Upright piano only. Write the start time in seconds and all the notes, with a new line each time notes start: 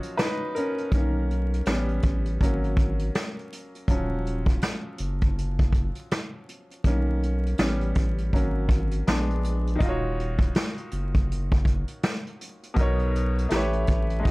Already playing: F3 F#3 C#4 F4 F#4 C#5 D#5
0.18 D#4 B4
0.55 C#4 A#4
0.93 D#3 A#3 C#4
1.67 G3 B3 C#4
2.42 F#3 A#3 C#4
3.89 F3 F#3 C#4
6.85 D#3 A#3 C#4
7.59 G3 B3 C#4
8.33 F#3 A#3 C#4
9.07 G#3 B3 D4
9.75 D#3 D#4
9.82 F4 F#4
9.89 C#5
12.74 B2 B3 D#4
12.79 A#4 C#5
13.49 A3 E4 G4
13.54 B4 C#5
14.19 G#3 D#4
14.26 F#4